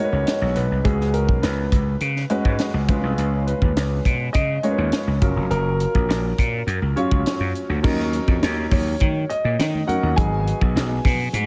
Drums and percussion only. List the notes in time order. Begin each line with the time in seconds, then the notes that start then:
0.27 snare, closed hi-hat
0.56 closed hi-hat
0.85 kick, closed hi-hat
1.01 snare
1.14 closed hi-hat
1.29 kick
1.43 snare, closed hi-hat
1.72 kick, closed hi-hat
2.00 closed hi-hat
2.16 snare
2.30 closed hi-hat
2.45 kick
2.59 snare, closed hi-hat
2.88 kick, closed hi-hat
3.18 closed hi-hat
3.47 closed hi-hat
3.62 kick
3.77 snare, closed hi-hat
4.05 kick, closed hi-hat
4.34 kick, closed hi-hat
4.63 closed hi-hat
4.92 snare, closed hi-hat
5.22 kick, closed hi-hat
5.51 closed hi-hat
5.80 closed hi-hat
5.95 kick
6.10 snare, closed hi-hat
6.38 kick, closed hi-hat
6.68 closed hi-hat
6.97 closed hi-hat
7.11 kick
7.26 snare, closed hi-hat
7.55 closed hi-hat
7.84 kick, crash, low conga
8.00 snare, muted conga
8.13 closed hi-hat
8.28 kick
8.43 snare, closed hi-hat, muted conga
8.58 muted conga
8.71 kick, open hi-hat, low conga
9.00 kick, closed hi-hat, high conga
9.16 muted conga
9.30 closed hi-hat
9.59 snare, closed hi-hat
9.75 high conga
9.88 closed hi-hat, high conga, low conga
10.18 kick, closed hi-hat, muted conga, low conga
10.34 muted conga
10.47 closed hi-hat
10.61 kick
10.77 snare, closed hi-hat
10.92 muted conga
11.05 kick, snare, open hi-hat, low conga
11.33 closed hi-hat, high conga